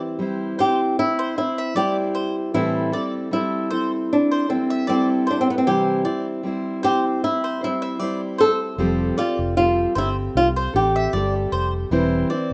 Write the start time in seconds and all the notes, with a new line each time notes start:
Already playing: C4 E4 G4 C5
0.19 G3 C4 E4 C5
0.58 C4 E4 G4 C5
0.99 E4
1.19 C5
1.36 C4 E4 C5
1.58 E5
1.75 G3 C4 E4 G4 C5 D5
2.15 C5
2.54 A2 E3 G3 C4 E4 A4
2.92 G3 C4 E4 A4 D5
3.31 G3 C4 E4 A4
3.70 G3 C4 E4 A4 C5
4.13 D4
4.32 C5
4.49 G3 C4 E4 A4
4.70 E5
4.87 G3 C4 E4 D5
4.91 A4
5.27 D4 C5
5.41 C4
5.50 B3
5.58 C4
5.66 C3 E3 G3 C4 E4 G4 C5
6.05 G3 C4 E4 C5 D5
6.43 G3 C4 E4 C5
6.83 G3 C4 E4 G4 C5
7.24 E4
7.44 C5
7.61 G3 C4 E4 C5
7.82 E5
7.99 G3 C4 E4 C5 D5
8.38 A4 C5
8.78 F1 F3 G3 C4 G4 A4
9.16 C4 F4 G4 A4 D5
9.39 F1
9.56 G3 C4 F4 G4 A4
9.95 G1 C4 E4 G4 A4 C5
10.35 C2 F4
10.56 C5
10.74 A1 C4 G4 A4
10.96 E5
11.13 G1 G3 C4 G4 A4 D5
11.52 F1 C5
11.91 E1 E3 G3 C4 E4 C5
12.30 C4 E4 C5 D5